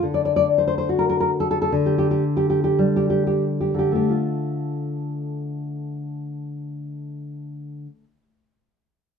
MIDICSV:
0, 0, Header, 1, 2, 480
1, 0, Start_track
1, 0, Key_signature, -1, "minor"
1, 0, Tempo, 852273
1, 18, Time_signature, 2, 2, 24, 8
1, 978, Tempo, 1047120
1, 1458, Tempo, 1330377
1, 1938, Tempo, 1282051
1, 3836, End_track
2, 0, Start_track
2, 0, Title_t, "Nylon-string guitar"
2, 0, Program_c, 0, 24
2, 15, Note_on_c, 0, 50, 46
2, 79, Note_on_c, 0, 74, 56
2, 135, Note_off_c, 0, 74, 0
2, 142, Note_on_c, 0, 74, 59
2, 197, Note_off_c, 0, 74, 0
2, 204, Note_on_c, 0, 74, 67
2, 260, Note_off_c, 0, 74, 0
2, 327, Note_on_c, 0, 72, 53
2, 373, Note_off_c, 0, 72, 0
2, 380, Note_on_c, 0, 72, 54
2, 432, Note_off_c, 0, 72, 0
2, 439, Note_on_c, 0, 72, 58
2, 494, Note_off_c, 0, 72, 0
2, 502, Note_on_c, 0, 66, 47
2, 556, Note_on_c, 0, 70, 59
2, 610, Note_off_c, 0, 70, 0
2, 616, Note_on_c, 0, 70, 55
2, 671, Note_off_c, 0, 70, 0
2, 678, Note_on_c, 0, 70, 55
2, 732, Note_off_c, 0, 70, 0
2, 789, Note_on_c, 0, 69, 59
2, 842, Note_off_c, 0, 69, 0
2, 849, Note_on_c, 0, 69, 68
2, 904, Note_off_c, 0, 69, 0
2, 910, Note_on_c, 0, 69, 69
2, 954, Note_off_c, 0, 50, 0
2, 970, Note_on_c, 0, 50, 55
2, 976, Note_off_c, 0, 69, 0
2, 982, Note_off_c, 0, 66, 0
2, 1035, Note_on_c, 0, 67, 53
2, 1085, Note_off_c, 0, 67, 0
2, 1091, Note_on_c, 0, 67, 58
2, 1143, Note_off_c, 0, 67, 0
2, 1148, Note_on_c, 0, 67, 60
2, 1205, Note_off_c, 0, 67, 0
2, 1267, Note_on_c, 0, 67, 56
2, 1321, Note_off_c, 0, 67, 0
2, 1326, Note_on_c, 0, 67, 53
2, 1386, Note_off_c, 0, 67, 0
2, 1391, Note_on_c, 0, 67, 56
2, 1458, Note_off_c, 0, 67, 0
2, 1459, Note_on_c, 0, 55, 45
2, 1523, Note_on_c, 0, 67, 53
2, 1567, Note_off_c, 0, 67, 0
2, 1572, Note_on_c, 0, 67, 49
2, 1629, Note_off_c, 0, 67, 0
2, 1633, Note_on_c, 0, 67, 49
2, 1695, Note_off_c, 0, 67, 0
2, 1754, Note_on_c, 0, 67, 42
2, 1799, Note_off_c, 0, 50, 0
2, 1804, Note_on_c, 0, 50, 38
2, 1816, Note_off_c, 0, 67, 0
2, 1820, Note_on_c, 0, 67, 41
2, 1867, Note_on_c, 0, 57, 31
2, 1876, Note_off_c, 0, 67, 0
2, 1880, Note_on_c, 0, 67, 42
2, 1931, Note_on_c, 0, 65, 36
2, 1938, Note_off_c, 0, 55, 0
2, 1938, Note_off_c, 0, 67, 0
2, 3341, Note_off_c, 0, 50, 0
2, 3407, Note_off_c, 0, 57, 0
2, 3473, Note_off_c, 0, 65, 0
2, 3836, End_track
0, 0, End_of_file